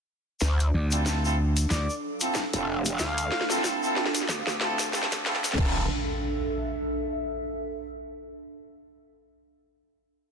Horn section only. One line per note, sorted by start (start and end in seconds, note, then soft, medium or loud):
0.92 1.03 C4 medium
0.92 1.03 E4 medium
0.92 1.03 F4 medium
0.92 1.03 A4 medium
1.06 1.22 C4 medium
1.06 1.22 E4 medium
1.06 1.22 F4 medium
1.06 1.22 A4 medium
1.24 1.35 C4 medium
1.24 1.35 E4 medium
1.24 1.35 F4 medium
1.24 1.35 A4 loud
2.21 2.40 C4 medium
2.21 2.40 E4 medium
2.21 2.40 F4 medium
2.21 2.40 A4 medium
2.54 2.65 C4 medium
2.54 2.65 E4 medium
2.54 2.65 F4 medium
2.54 2.65 A4 medium
3.50 3.61 C4 medium
3.50 3.61 E4 medium
3.50 3.61 F4 medium
3.50 3.61 A4 medium
3.64 3.78 C4 loud
3.64 3.78 E4 medium
3.64 3.78 F4 medium
3.64 3.78 A4 loud
3.83 4.01 C4 medium
3.83 4.01 E4 medium
3.83 4.01 F4 medium
3.83 4.01 A4 loud
4.61 4.83 C4 medium
4.61 4.83 E4 medium
4.61 4.83 F4 medium
4.61 4.83 A4 loud
4.93 5.08 C4 medium
4.93 5.08 E4 medium
4.93 5.08 F4 medium
4.93 5.08 A4 loud
5.26 5.40 C4 medium
5.26 5.40 E4 medium
5.26 5.40 F4 medium
5.26 5.40 A4 medium
5.58 5.83 C4 medium
5.58 5.83 E4 medium
5.58 5.83 F4 medium
5.58 5.83 A4 loud